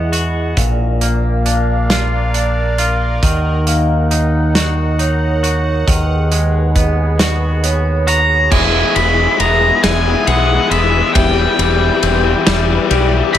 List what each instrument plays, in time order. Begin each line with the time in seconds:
Already playing: clean electric guitar E2 G#3 B3 F#4, fingered electric bass E2, analog synth pad E3 E4 G#4 F#5, vibraphone D#5
0.12 clean electric guitar F#4, closed hi-hat
0.57 fingered electric bass A#1, clean electric guitar A#2, analog synth pad A#3 A#4 D5 F5, vibraphone F5, kick, closed hi-hat
1.01 clean electric guitar A#3, closed hi-hat
1.46 clean electric guitar D4, vibraphone F5, closed hi-hat
1.90 clean electric guitar F4, snare, closed hi-hat
2.34 clean electric guitar D4, vibraphone D5, closed hi-hat
2.78 clean electric guitar F4, closed hi-hat
3.22 fingered electric bass D#2, analog synth pad D#3 D#4 F#5, clean electric guitar D#3, vibraphone D#5, kick, closed hi-hat
3.67 clean electric guitar A#3, closed hi-hat
4.11 clean electric guitar D#4, vibraphone D#5, closed hi-hat
4.55 clean electric guitar F#4, snare, closed hi-hat
4.99 clean electric guitar D#4, vibraphone C#5, closed hi-hat
5.43 clean electric guitar F#4, closed hi-hat
5.87 fingered electric bass D#2, clean electric guitar D#3, analog synth pad G#4 B4, vibraphone D#5, kick, closed hi-hat
6.32 clean electric guitar G#3, closed hi-hat
6.75 clean electric guitar B3, vibraphone D#5, kick, closed hi-hat
7.19 clean electric guitar F#4, snare, closed hi-hat
7.64 clean electric guitar B3, vibraphone C#5, closed hi-hat
8.07 clean electric guitar F#4, lead electric guitar A#5, closed hi-hat
8.51 fingered electric bass E1, clean electric guitar E2, analog synth pad E3 B3 G#4, overdriven electric guitar E3 G#3, vibraphone E5, lead electric guitar G#5, kick, crash
8.59 overdriven electric guitar E3 G#3
8.67 overdriven electric guitar E3 G#3
8.74 overdriven electric guitar E3 G#3
8.81 overdriven electric guitar E3 G#3
8.90 overdriven electric guitar E3 G#3
8.95 fingered electric bass E1, overdriven electric guitar E3 G#3, clean electric guitar G#3, lead electric guitar B5, ride
9.06 overdriven electric guitar E3 G#3
9.13 overdriven electric guitar E3 G#3
9.21 overdriven electric guitar E3 G#3
9.27 overdriven electric guitar E3 G#3
9.37 fingered electric bass E1, overdriven electric guitar E3 G#3, clean electric guitar B3, vibraphone E5, ride
9.41 overdriven electric guitar E3 G#3, lead electric guitar A#5
9.51 overdriven electric guitar E3 G#3
9.59 overdriven electric guitar E3 G#3
9.67 overdriven electric guitar E3 G#3
9.76 overdriven electric guitar E3 G#3
9.82 fingered electric bass E1, overdriven electric guitar E3 G#3, clean electric guitar G#3, lead electric guitar G#5, snare, ride
9.91 overdriven electric guitar E3 G#3
9.98 overdriven electric guitar E3 G#3
10.06 overdriven electric guitar E3 G#3
10.14 overdriven electric guitar E3 G#3
10.21 overdriven electric guitar E3 G#3
10.27 fingered electric bass B1, overdriven electric guitar E3 G#3, clean electric guitar G#4, lead electric guitar F#5, vibraphone D#6, ride
10.36 overdriven electric guitar E3 G#3
10.44 overdriven electric guitar E3 G#3
10.52 overdriven electric guitar E3 G#3
10.60 overdriven electric guitar E3 G#3
10.67 fingered electric bass E1, overdriven electric guitar E3 G#3
10.71 overdriven electric guitar E3, clean electric guitar B3, lead electric guitar E5, ride
10.77 overdriven electric guitar G#3
10.84 overdriven electric guitar E3 G#3
10.90 overdriven electric guitar E3 G#3
10.98 overdriven electric guitar E3 G#3
11.06 overdriven electric guitar E3 G#3
11.14 fingered electric bass E1, clean electric guitar E2, overdriven electric guitar E3 G3, analog synth pad C4 B4 D5, vibraphone E5, lead electric guitar G5, kick, ride
11.22 overdriven electric guitar E3 G3
11.31 overdriven electric guitar E3 G3
11.38 overdriven electric guitar E3 G3
11.46 overdriven electric guitar E3 G3
11.54 overdriven electric guitar E3 G3
11.58 fingered electric bass E1, overdriven electric guitar E3, clean electric guitar G3, ride
11.63 overdriven electric guitar G3
11.68 overdriven electric guitar E3 G3
11.77 overdriven electric guitar E3 G3
11.85 overdriven electric guitar E3 G3
11.93 overdriven electric guitar E3 G3
11.99 fingered electric bass E1, overdriven electric guitar E3 G3, clean electric guitar C4, vibraphone E5, ride
12.06 overdriven electric guitar E3 G3
12.15 overdriven electric guitar E3 G3
12.23 overdriven electric guitar E3 G3
12.31 overdriven electric guitar E3 G3
12.38 overdriven electric guitar E3 G3
12.46 fingered electric bass E1, overdriven electric guitar E3 G3, clean electric guitar G3, snare, ride
12.54 overdriven electric guitar E3 G3
12.62 overdriven electric guitar E3 G3
12.69 overdriven electric guitar E3 G3
12.77 overdriven electric guitar E3 G3
12.85 overdriven electric guitar E3 G3
12.90 fingered electric bass B1, overdriven electric guitar E3 G3, clean electric guitar G4, vibraphone D5, ride
13.01 overdriven electric guitar E3 G3
13.08 overdriven electric guitar E3 G3
13.16 overdriven electric guitar E3 G3
13.23 overdriven electric guitar E3 G3
13.31 fingered electric bass E1, overdriven electric guitar E3 G3, clean electric guitar C4, lead electric guitar B5
13.35 ride